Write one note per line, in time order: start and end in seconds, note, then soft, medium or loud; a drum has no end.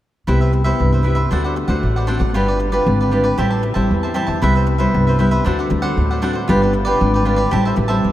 0.27 0.72 C2 medium
0.27 0.77 C3 soft
0.27 0.63 B3 medium
0.27 0.39 E4 medium
0.27 0.63 E4 soft
0.27 0.63 G4 medium
0.27 0.40 B4 medium
0.27 0.40 C5 medium
0.27 0.40 E5 medium
0.41 0.52 B4 soft
0.41 0.52 C5 soft
0.41 0.53 E5 soft
0.53 muted cavaquinho stroke soft
0.64 1.01 B3 medium
0.64 1.01 E4 soft
0.64 1.01 G4 medium
0.64 0.91 B4 medium
0.64 0.91 C5 soft
0.64 0.90 E5 medium
0.80 1.24 C2 medium
0.80 1.29 G2 soft
0.93 1.03 B4 soft
0.93 1.03 C5 soft
0.93 1.04 E5 soft
1.03 1.21 B3 soft
1.03 1.16 E4 soft
1.03 1.21 E4 soft
1.03 1.21 G4 soft
1.03 1.15 B4 soft
1.03 1.16 C5 soft
1.03 1.14 E5 soft
1.15 1.29 B4 soft
1.15 1.30 C5 soft
1.15 1.29 E5 medium
1.31 1.64 D2 medium
1.31 1.81 D3 soft
1.31 1.56 A3 soft
1.31 1.57 C4 soft
1.31 1.43 D4 medium
1.31 1.57 F#4 medium
1.31 1.43 C5 medium
1.31 1.44 D5 medium
1.31 1.43 F#5 medium
1.44 1.55 C5 soft
1.44 1.55 D5 soft
1.44 1.56 F#5 soft
1.56 muted cavaquinho stroke soft
1.68 1.80 D2 medium
1.68 2.04 A3 medium
1.68 2.05 C4 soft
1.68 2.05 F#4 medium
1.68 1.95 C5 soft
1.68 1.94 D5 medium
1.68 1.94 F#5 medium
1.83 2.16 A1 medium
1.83 2.33 A2 soft
1.96 2.06 C5 soft
1.96 2.07 D5 soft
1.96 2.08 F#5 soft
2.07 2.31 A3 soft
2.07 2.31 C4 soft
2.07 2.20 D4 medium
2.07 2.31 F#4 medium
2.07 2.20 C5 medium
2.07 2.19 D5 medium
2.07 2.18 F#5 medium
2.19 2.35 A1 medium
2.19 2.33 C5 soft
2.19 2.33 D5 soft
2.19 2.33 F#5 soft
2.34 2.79 G1 medium
2.34 2.84 G3 soft
2.34 2.70 D4 medium
2.34 2.47 F4 medium
2.34 2.70 F4 soft
2.34 2.47 G4 medium
2.34 2.47 B4 medium
2.34 2.70 B4 medium
2.34 2.47 D5 medium
2.48 2.59 G4 soft
2.48 2.59 B4 soft
2.48 2.59 D5 soft
2.59 muted cavaquinho stroke soft
2.72 3.08 D4 medium
2.72 3.08 F4 medium
2.72 2.99 G4 soft
2.72 3.08 B4 medium
2.72 2.98 B4 medium
2.72 2.98 D5 medium
2.87 3.31 G#1 medium
2.87 3.36 D3 soft
3.01 3.10 G4 soft
3.01 3.11 B4 soft
3.01 3.11 D5 soft
3.11 3.28 D4 soft
3.11 3.24 F4 soft
3.11 3.28 F4 soft
3.11 3.24 G4 soft
3.11 3.23 B4 soft
3.11 3.28 B4 medium
3.11 3.22 D5 soft
3.24 3.36 G4 medium
3.24 3.37 B4 medium
3.24 3.37 D5 medium
3.38 3.72 A1 medium
3.38 3.88 A2 medium
3.38 3.73 G3 soft
3.38 3.74 C4 medium
3.38 3.74 E4 medium
3.38 3.50 G4 medium
3.38 3.51 C5 medium
3.38 3.51 E5 medium
3.38 3.49 A5 medium
3.50 3.62 C5 soft
3.50 3.62 E5 soft
3.50 3.62 A5 soft
3.63 muted cavaquinho stroke soft
3.74 3.88 A1 medium
3.74 4.11 G3 medium
3.74 4.11 C4 medium
3.74 4.12 E4 medium
3.74 4.01 C5 medium
3.74 4.01 E5 medium
3.74 4.01 A5 medium
3.91 4.24 E2 medium
3.91 4.40 E3 medium
4.03 4.14 C5 soft
4.03 4.14 E5 soft
4.03 4.15 A5 soft
4.14 4.38 G3 soft
4.14 4.38 C4 soft
4.14 4.38 E4 medium
4.14 4.27 G4 medium
4.14 4.27 C5 medium
4.14 4.26 E5 medium
4.14 4.25 A5 medium
4.27 4.40 E2 medium
4.27 4.41 C5 soft
4.27 4.40 E5 soft
4.27 4.40 A5 soft
4.42 4.86 C2 medium
4.42 4.92 C3 medium
4.42 4.77 G3 medium
4.42 4.77 B3 medium
4.42 4.54 E4 medium
4.42 4.78 E4 medium
4.42 4.54 B4 medium
4.42 4.54 C5 medium
4.42 4.54 E5 medium
4.55 4.66 B4 soft
4.55 4.65 C5 soft
4.55 4.66 E5 soft
4.66 muted cavaquinho stroke soft
4.78 5.15 G3 medium
4.78 5.15 B3 medium
4.78 5.15 E4 medium
4.78 5.05 B4 medium
4.78 5.05 C5 medium
4.78 5.05 E5 medium
4.94 5.38 C2 medium
4.94 5.43 G2 soft
5.07 5.19 B4 soft
5.07 5.18 C5 soft
5.07 5.19 E5 soft
5.19 5.41 G3 medium
5.19 5.42 B3 soft
5.19 5.31 E4 soft
5.19 5.42 E4 medium
5.19 5.30 B4 soft
5.19 5.31 C5 medium
5.19 5.30 E5 soft
5.31 5.44 B4 medium
5.31 5.44 C5 soft
5.31 5.44 E5 medium
5.45 5.68 D2 medium
5.45 5.95 D3 medium
5.45 5.70 A3 soft
5.45 5.70 C4 soft
5.45 5.57 D4 medium
5.45 5.71 F#4 medium
5.45 5.58 C5 medium
5.45 5.58 D5 medium
5.45 5.58 F#5 medium
5.59 5.69 C5 soft
5.59 5.69 D5 soft
5.59 5.69 F#5 soft
5.70 5.93 D2 medium
5.70 muted cavaquinho stroke soft
5.82 6.19 A3 medium
5.82 6.19 C4 medium
5.82 6.19 F#4 medium
5.82 6.09 C5 medium
5.82 6.08 D5 medium
5.82 6.08 F#5 medium
5.97 6.51 D2 medium
5.97 6.47 A2 medium
6.11 6.21 C5 soft
6.11 6.21 D5 soft
6.11 6.22 F#5 soft
6.22 6.38 A3 soft
6.22 6.38 C4 medium
6.22 6.34 D4 medium
6.22 6.39 F#4 medium
6.22 6.34 C5 medium
6.22 6.33 D5 medium
6.22 6.32 F#5 medium
6.33 6.48 C5 soft
6.33 6.47 D5 soft
6.33 6.47 F#5 soft
6.48 6.93 G1 medium
6.48 6.98 G3 medium
6.48 6.73 D4 medium
6.48 6.60 F4 medium
6.48 6.74 F4 medium
6.48 6.61 G4 medium
6.48 6.61 B4 medium
6.48 6.74 B4 medium
6.48 6.61 D5 medium
6.62 6.73 B4 soft
6.62 6.73 D5 soft
6.73 muted cavaquinho stroke soft
6.85 7.22 D4 medium
6.85 7.22 F4 medium
6.85 7.12 G4 medium
6.85 7.12 B4 medium
6.85 7.22 B4 medium
6.85 7.11 D5 medium
7.01 7.45 G#1 medium
7.01 7.50 D3 soft
7.14 7.24 G4 soft
7.14 7.25 B4 soft
7.14 7.25 D5 soft
7.25 7.41 D4 medium
7.25 7.38 F4 soft
7.25 7.42 F4 medium
7.25 7.37 G4 soft
7.25 7.37 B4 soft
7.25 7.42 B4 medium
7.25 7.35 D5 soft
7.36 7.50 G4 soft
7.36 7.51 B4 medium
7.36 7.50 D5 medium
7.51 7.75 A1 medium
7.51 8.02 A2 medium
7.51 7.87 G3 medium
7.51 7.88 C4 soft
7.51 7.88 E4 medium
7.51 7.64 G4 medium
7.51 7.64 C5 medium
7.51 7.64 E5 medium
7.51 7.64 A5 medium
7.65 7.75 C5 soft
7.65 7.75 E5 soft
7.65 7.75 A5 soft
7.76 8.00 A1 medium
7.76 muted cavaquinho stroke soft
7.88 8.12 G3 medium
7.88 8.12 C4 medium
7.88 8.12 E4 medium
7.88 8.12 C5 medium
7.88 8.12 E5 medium
7.88 8.12 A5 medium
8.04 8.12 E2 medium
8.04 8.12 E3 medium